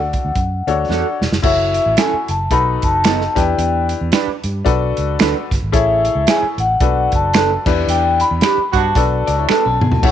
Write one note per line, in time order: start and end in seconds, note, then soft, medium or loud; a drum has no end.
0.00 0.17 D2 medium
0.00 0.35 D4 medium
0.00 0.36 F#4 medium
0.00 0.36 A4 medium
0.00 0.36 D5 medium
0.00 1.18 F#5 medium
0.13 kick medium
0.13 closed hi-hat medium
0.25 0.34 D2 medium
0.35 0.61 F#2 medium
0.35 kick medium
0.35 closed hi-hat medium
0.67 0.85 D2 medium
0.67 1.27 D4 medium
0.67 1.27 F#4 medium
0.67 1.27 A4 medium
0.67 1.27 C#5 medium
0.67 closed hi-hat medium
0.89 1.02 E2 medium
0.89 1.05 D4 medium
0.89 1.05 F#4 medium
0.89 1.06 A4 medium
0.89 snare soft
1.21 1.30 E1 medium
1.21 snare medium
1.32 1.41 F1 medium
1.32 snare medium
1.43 1.78 F#1 loud
1.43 2.28 E4 medium
1.43 2.28 F#4 medium
1.43 2.29 A4 medium
1.43 2.29 C#5 medium
1.43 1.94 E5 medium
1.43 kick loud
1.43 crash medium
1.74 closed hi-hat medium
1.86 1.95 A1 medium
1.97 2.13 C#4 medium
1.97 2.13 E4 medium
1.97 2.13 A4 medium
1.97 2.13 G#5 medium
1.97 finger snap medium
1.97 snare loud
1.97 closed hi-hat medium
2.13 muted fingered electric bass stroke soft
2.28 2.47 F#1 medium
2.28 2.53 A5 medium
2.28 closed hi-hat medium
2.51 2.76 B1 loud
2.51 3.36 D#4 medium
2.51 3.36 F#4 medium
2.51 3.36 A4 medium
2.51 3.35 B4 medium
2.51 2.84 B5 loud
2.51 kick medium
2.51 closed hi-hat medium
2.82 3.26 F#1 medium
2.82 3.39 A5 loud
2.82 kick medium
2.82 closed hi-hat medium
3.04 3.20 B3 medium
3.04 3.21 D#4 medium
3.04 3.21 A4 loud
3.04 finger snap medium
3.04 snare loud
3.04 closed hi-hat loud
3.21 snare soft
3.35 3.54 E2 loud
3.35 4.18 D4 medium
3.35 4.18 E4 medium
3.35 4.18 G4 medium
3.35 4.19 B4 medium
3.35 3.87 G5 medium
3.35 kick loud
3.35 snare soft
3.35 closed hi-hat medium
3.58 3.93 E2 loud
3.58 closed hi-hat loud
3.89 closed hi-hat medium
4.01 4.10 E2 medium
4.12 4.28 D4 medium
4.12 4.28 G4 medium
4.12 4.29 B4 loud
4.12 finger snap medium
4.12 snare loud
4.12 closed hi-hat medium
4.28 muted fingered electric bass stroke soft
4.44 4.62 G2 medium
4.44 closed hi-hat medium
4.65 4.92 B1 loud
4.65 5.50 D4 medium
4.65 5.50 F#4 medium
4.65 5.50 A4 medium
4.65 5.51 B4 medium
4.65 kick loud
4.65 closed hi-hat medium
4.97 5.16 C#2 loud
4.97 closed hi-hat medium
5.19 5.33 D2 medium
5.19 5.35 D4 medium
5.19 5.35 A4 medium
5.19 5.36 B4 loud
5.19 finger snap loud
5.19 snare loud
5.19 closed hi-hat loud
5.51 5.60 G1 medium
5.51 kick medium
5.51 snare soft
5.51 closed hi-hat medium
5.62 5.71 G#1 medium
5.72 6.08 A1 loud
5.72 6.57 E4 medium
5.72 6.58 G#4 medium
5.72 6.58 A4 medium
5.72 6.58 C#5 medium
5.72 6.29 E5 medium
5.72 kick loud
5.72 closed hi-hat loud
6.05 closed hi-hat medium
6.15 6.24 C#2 medium
6.27 6.42 E4 medium
6.27 6.43 G#4 loud
6.27 6.43 C#5 loud
6.27 6.42 G#5 medium
6.27 finger snap medium
6.27 snare loud
6.27 closed hi-hat medium
6.43 muted fingered electric bass stroke soft
6.58 6.76 A1 medium
6.58 7.09 F#5 medium
6.58 closed hi-hat medium
6.80 7.06 B1 loud
6.80 7.65 D4 medium
6.80 7.66 F#4 medium
6.80 7.65 A4 medium
6.80 7.66 B4 medium
6.80 kick loud
6.80 closed hi-hat medium
7.12 7.56 F#1 loud
7.12 7.64 A5 loud
7.12 kick medium
7.12 closed hi-hat medium
7.33 7.50 D4 medium
7.33 7.50 A4 medium
7.33 7.51 B4 medium
7.33 finger snap loud
7.33 snare loud
7.33 closed hi-hat loud
7.66 7.84 E2 loud
7.66 8.48 D4 medium
7.66 8.48 E4 medium
7.66 8.49 G4 medium
7.66 8.49 B4 medium
7.66 kick loud
7.66 snare soft
7.66 crash medium
7.87 8.22 E2 loud
7.87 8.02 G3 medium
7.87 8.02 D4 medium
7.87 8.02 E4 medium
7.87 8.02 G4 loud
7.87 8.18 G5 loud
7.87 closed hi-hat loud
8.20 8.76 B5 loud
8.20 closed hi-hat medium
8.31 8.40 E2 medium
8.41 8.57 D4 medium
8.41 8.57 G4 medium
8.41 8.58 B4 medium
8.41 finger snap medium
8.41 snare loud
8.41 closed hi-hat medium
8.58 muted fingered electric bass stroke soft
8.72 8.91 G2 loud
8.72 9.09 F#3 loud
8.72 9.09 B3 loud
8.72 9.09 D4 loud
8.72 9.09 F#4 loud
8.72 kick loud
8.72 closed hi-hat medium
8.76 9.49 A5 medium
8.95 9.21 B1 loud
8.95 9.80 D4 medium
8.95 9.81 F#4 medium
8.95 9.81 A4 medium
8.95 9.81 B4 medium
8.95 kick loud
8.95 closed hi-hat medium
9.27 9.45 C#2 medium
9.27 9.38 F#4 medium
9.27 9.38 D5 medium
9.27 closed hi-hat medium
9.38 9.49 E4 medium
9.38 9.49 C#5 medium
9.49 9.64 D4 medium
9.49 9.65 D4 medium
9.49 9.65 A4 loud
9.49 9.64 B4 medium
9.49 9.65 B4 loud
9.49 10.00 A5 loud
9.49 finger snap loud
9.49 muted fingered electric bass stroke soft
9.49 snare medium
9.65 9.78 B1 medium
9.65 9.81 C#4 medium
9.65 9.80 A4 medium
9.81 9.99 B2 medium
9.81 9.92 B3 medium
9.81 9.91 G#4 medium
9.81 mid tom medium
9.92 10.12 A3 medium
9.92 10.12 F#4 medium
9.92 floor tom loud
10.03 10.12 A1 loud
10.03 10.12 A3 medium
10.03 10.12 C#4 medium
10.03 10.12 E4 medium
10.03 10.12 A4 medium
10.03 10.12 C#5 medium
10.03 10.12 F#5 loud
10.03 kick loud
10.03 crash loud